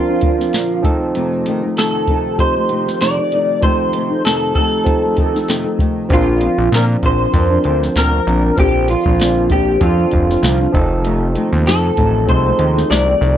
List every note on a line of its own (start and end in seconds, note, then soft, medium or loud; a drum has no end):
0.00 0.82 F3 medium
0.00 0.83 C4 medium
0.00 0.86 D4 medium
0.00 0.81 F4 medium
0.00 0.87 A#4 medium
0.08 0.21 F3 soft
0.08 0.22 C4 soft
0.08 0.22 D4 medium
0.21 0.39 D3 medium
0.21 0.39 F3 medium
0.21 0.39 C4 medium
0.21 0.37 D4 medium
0.21 kick medium
0.21 closed hi-hat medium
0.38 0.52 F3 soft
0.38 0.53 C4 soft
0.38 0.53 D4 medium
0.38 snare soft
0.53 0.84 A#2 medium
0.53 0.82 D3 medium
0.53 0.84 F3 medium
0.53 0.85 C4 medium
0.53 0.85 D4 medium
0.53 snare loud
0.53 closed hi-hat medium
0.82 1.14 C3 medium
0.82 1.15 D#3 medium
0.82 1.89 F3 medium
0.82 1.15 A3 medium
0.82 1.89 C4 medium
0.82 1.90 D#4 medium
0.82 1.16 D#4 medium
0.82 1.90 A4 medium
0.82 kick medium
0.82 closed hi-hat medium
1.14 1.46 F2 medium
1.14 1.44 C3 medium
1.14 1.45 D#3 medium
1.14 1.46 A3 medium
1.14 1.47 D#4 medium
1.14 closed hi-hat medium
1.45 1.63 C3 medium
1.45 1.63 D#3 medium
1.45 1.63 A3 medium
1.45 1.62 D#4 medium
1.45 closed hi-hat medium
1.63 1.76 D#3 soft
1.63 1.77 A3 soft
1.63 1.77 D#4 soft
1.76 2.08 F2 medium
1.76 2.06 C3 medium
1.76 2.07 D#3 medium
1.76 2.08 A3 medium
1.76 2.09 D#4 medium
1.76 2.40 A4 medium
1.76 snare loud
1.76 closed hi-hat medium
2.07 2.55 C3 medium
2.07 2.56 D#3 medium
2.07 2.56 A3 medium
2.07 2.54 D#4 medium
2.07 kick medium
2.07 closed hi-hat medium
2.38 3.44 F3 medium
2.38 3.44 C4 soft
2.38 3.45 D#4 medium
2.38 3.45 G4 medium
2.38 3.01 C5 medium
2.38 kick medium
2.38 closed hi-hat medium
2.56 2.69 D#3 soft
2.56 2.70 A3 soft
2.56 2.70 D#4 soft
2.69 2.86 C3 medium
2.69 2.87 D#3 medium
2.69 2.87 A3 medium
2.69 2.85 D#4 medium
2.69 closed hi-hat medium
2.86 3.00 D#3 soft
2.86 3.00 A3 soft
2.86 3.00 D#4 soft
2.86 snare soft
3.00 3.17 F2 medium
3.00 3.18 C3 medium
3.00 3.18 D#3 medium
3.00 3.18 A3 medium
3.00 3.16 D#4 medium
3.00 3.63 D5 medium
3.00 snare medium
3.00 closed hi-hat medium
3.17 3.31 D#3 soft
3.17 3.32 A3 soft
3.17 3.31 D#4 soft
3.31 3.62 C3 medium
3.31 3.62 D#3 soft
3.31 3.63 A3 medium
3.31 3.63 D#4 medium
3.31 closed hi-hat medium
3.61 3.93 F2 medium
3.61 3.92 C3 medium
3.61 3.93 D#3 medium
3.61 4.67 F3 medium
3.61 3.94 A3 medium
3.61 4.68 C4 soft
3.61 4.68 D#4 medium
3.61 3.94 D#4 medium
3.61 4.69 A4 medium
3.61 4.25 C5 medium
3.61 kick medium
3.61 closed hi-hat medium
3.93 4.10 C3 medium
3.93 4.11 D#3 medium
3.93 4.11 A3 medium
3.93 4.09 D#4 medium
3.93 closed hi-hat medium
4.10 4.24 D#3 soft
4.10 4.25 A3 soft
4.10 4.24 D#4 soft
4.25 4.56 F2 medium
4.25 4.53 C3 medium
4.25 4.55 D#3 medium
4.25 4.56 A3 medium
4.25 4.56 D#4 medium
4.25 4.54 A4 medium
4.25 snare loud
4.25 closed hi-hat medium
4.55 5.03 C3 medium
4.55 5.04 D#3 medium
4.55 5.03 A3 medium
4.55 5.02 D#4 medium
4.55 5.75 A4 medium
4.55 kick medium
4.55 closed hi-hat medium
4.84 5.91 F3 medium
4.84 5.91 C4 medium
4.84 5.92 D#4 medium
4.84 5.92 A4 medium
4.84 kick medium
4.84 closed hi-hat medium
5.03 5.17 D#3 soft
5.03 5.18 A3 soft
5.03 5.17 D#4 soft
5.16 5.34 C3 medium
5.16 5.35 D#3 medium
5.16 5.34 A3 medium
5.16 5.33 D#4 medium
5.16 kick medium
5.16 closed hi-hat medium
5.34 5.47 D#3 soft
5.34 5.48 A3 soft
5.34 5.48 D#4 soft
5.34 snare soft
5.48 5.65 F2 medium
5.48 5.65 C3 medium
5.48 5.65 D#3 medium
5.48 5.65 A3 medium
5.48 5.63 D#4 medium
5.48 snare medium
5.48 closed hi-hat medium
5.64 5.78 D#3 soft
5.64 5.79 A3 soft
5.64 5.79 D#4 soft
5.78 6.09 C3 soft
5.78 6.10 D#3 medium
5.78 6.10 A3 medium
5.78 6.10 D#4 medium
5.78 kick medium
5.78 closed hi-hat medium
6.08 6.48 A#1 medium
6.08 6.40 A#2 medium
6.08 6.39 D3 medium
6.08 7.15 F3 medium
6.08 6.40 F3 medium
6.08 7.15 C4 soft
6.08 6.41 C4 medium
6.08 7.16 D4 medium
6.08 6.41 D4 medium
6.08 7.16 A#4 medium
6.08 kick loud
6.08 closed hi-hat medium
6.13 6.70 F4 medium
6.40 6.57 D3 medium
6.40 6.58 F3 medium
6.40 6.57 C4 medium
6.40 6.56 D4 medium
6.40 closed hi-hat medium
6.57 6.69 A#1 medium
6.57 6.71 F3 soft
6.57 6.71 C4 soft
6.57 6.71 D4 soft
6.71 7.02 A#2 medium
6.71 6.97 A#2 loud
6.71 7.01 D3 medium
6.71 7.02 F3 medium
6.71 7.03 C4 medium
6.71 7.03 D4 medium
6.71 6.82 A#4 medium
6.71 snare loud
6.71 closed hi-hat medium
7.02 7.28 A#1 medium
7.02 7.50 D3 medium
7.02 7.51 F3 medium
7.02 7.50 C4 medium
7.02 7.49 D4 medium
7.02 7.93 C5 loud
7.02 kick medium
7.02 closed hi-hat medium
7.33 7.58 F2 medium
7.33 8.39 F3 medium
7.33 8.39 C4 medium
7.33 8.40 D4 medium
7.33 8.40 A#4 medium
7.33 kick medium
7.33 closed hi-hat medium
7.50 7.64 F3 soft
7.50 7.65 C4 soft
7.50 7.64 D4 soft
7.63 7.90 D2 medium
7.63 7.81 D3 soft
7.63 7.82 F3 medium
7.63 7.81 C4 medium
7.63 7.80 D4 medium
7.63 closed hi-hat medium
7.81 7.95 F3 soft
7.81 7.95 C4 soft
7.81 7.95 D4 soft
7.81 snare soft
7.95 8.21 D2 medium
7.95 8.12 A#2 medium
7.95 8.13 D3 medium
7.95 8.13 F3 medium
7.95 8.12 C4 medium
7.95 8.10 D4 medium
7.95 8.54 A#4 medium
7.95 snare loud
7.95 closed hi-hat medium
8.12 8.26 F3 soft
8.12 8.27 C4 soft
8.12 8.26 D4 soft
8.26 8.52 A#1 medium
8.26 8.56 D3 medium
8.26 8.56 F3 soft
8.26 8.57 C4 medium
8.26 8.57 D4 medium
8.26 closed hi-hat medium
8.57 8.96 A#1 loud
8.57 8.88 A#2 medium
8.57 8.87 D3 medium
8.57 9.63 F3 medium
8.57 8.88 F3 medium
8.57 9.63 C4 soft
8.57 8.89 C4 medium
8.57 9.64 D4 soft
8.57 8.89 D4 medium
8.57 8.87 G4 medium
8.57 9.64 A4 medium
8.57 kick loud
8.57 closed hi-hat medium
8.88 9.05 D3 medium
8.88 9.06 F3 medium
8.88 9.06 C4 medium
8.88 9.04 D4 medium
8.88 9.52 F4 medium
8.88 closed hi-hat medium
9.05 9.78 A#1 medium
9.05 9.19 F3 soft
9.05 9.20 C4 soft
9.05 9.19 D4 soft
9.05 kick medium
9.19 9.50 A#2 medium
9.19 9.49 D3 medium
9.19 9.50 F3 medium
9.19 9.51 C4 medium
9.19 9.51 D4 medium
9.19 snare loud
9.19 closed hi-hat medium
9.50 9.98 D3 medium
9.50 9.99 F3 medium
9.50 9.98 C4 medium
9.50 9.97 D4 medium
9.50 9.80 G4 medium
9.50 kick medium
9.50 closed hi-hat medium
9.80 10.06 F2 medium
9.80 10.71 F3 medium
9.80 10.72 C4 medium
9.80 10.74 D4 medium
9.80 10.71 F4 medium
9.80 10.74 A4 medium
9.80 kick medium
9.80 closed hi-hat medium
9.98 10.12 F3 soft
9.98 10.13 C4 soft
9.98 10.12 D4 medium
10.11 10.37 F1 medium
10.11 10.29 D3 medium
10.11 10.30 F3 medium
10.11 10.29 C4 medium
10.11 10.27 D4 medium
10.11 kick medium
10.11 closed hi-hat medium
10.29 10.42 F3 soft
10.29 10.43 C4 soft
10.29 10.43 D4 medium
10.29 snare soft
10.42 10.67 C2 medium
10.42 10.60 A#2 medium
10.42 10.60 D3 medium
10.42 10.60 F3 medium
10.42 10.60 C4 medium
10.42 10.58 D4 medium
10.42 snare loud
10.42 closed hi-hat medium
10.59 10.74 F3 soft
10.59 10.74 C4 soft
10.59 10.73 D4 soft
10.73 11.37 F1 loud
10.73 11.03 C3 medium
10.73 11.04 D#3 medium
10.73 11.79 F3 medium
10.73 11.05 A3 medium
10.73 11.79 C4 medium
10.73 11.80 D#4 medium
10.73 11.05 D#4 medium
10.73 11.80 A4 medium
10.73 kick medium
10.73 closed hi-hat medium
11.04 11.35 F2 medium
11.04 11.33 C3 medium
11.04 11.34 D#3 medium
11.04 11.35 A3 medium
11.04 11.36 D#4 medium
11.04 closed hi-hat medium
11.34 11.52 C3 medium
11.34 11.53 D#3 medium
11.34 11.52 A3 medium
11.34 11.50 D#4 medium
11.34 closed hi-hat medium
11.52 11.68 D#2 medium
11.52 11.65 D#3 soft
11.52 11.66 A3 soft
11.52 11.66 D#4 medium
11.65 11.97 F2 medium
11.65 11.91 F2 medium
11.65 11.95 C3 medium
11.65 11.96 D#3 medium
11.65 11.97 A3 medium
11.65 11.98 D#4 medium
11.65 12.25 A4 medium
11.65 snare loud
11.65 closed hi-hat medium
11.96 12.30 A1 medium
11.96 12.45 C3 medium
11.96 12.45 D#3 medium
11.96 12.45 A3 medium
11.96 12.43 D#4 medium
11.96 kick medium
11.96 closed hi-hat medium
12.27 12.53 C2 medium
12.27 13.34 F3 medium
12.27 13.34 C4 medium
12.27 13.34 D#4 medium
12.27 12.36 G#4 medium
12.27 12.90 C5 medium
12.27 kick medium
12.27 closed hi-hat medium
12.36 13.37 A4 medium
12.44 12.59 D#3 soft
12.44 12.60 A3 soft
12.44 12.59 D#4 medium
12.58 12.84 D#2 medium
12.58 12.76 C3 medium
12.58 12.77 D#3 medium
12.58 12.76 A3 medium
12.58 12.74 D#4 medium
12.58 closed hi-hat medium
12.75 12.90 D#3 soft
12.75 12.90 A3 soft
12.75 12.90 D#4 medium
12.75 snare soft
12.90 13.15 C2 medium
12.90 13.07 F2 medium
12.90 13.07 C3 medium
12.90 13.08 D#3 medium
12.90 13.07 A3 medium
12.90 13.06 D#4 medium
12.90 13.37 D5 medium
12.90 snare medium
12.90 closed hi-hat medium
13.07 13.20 D#3 soft
13.07 13.21 A3 soft
13.07 13.21 D#4 soft
13.20 13.37 C2 medium
13.20 13.37 C3 medium
13.20 13.37 D#3 medium
13.20 13.37 A3 medium
13.20 13.37 D#4 medium
13.20 closed hi-hat medium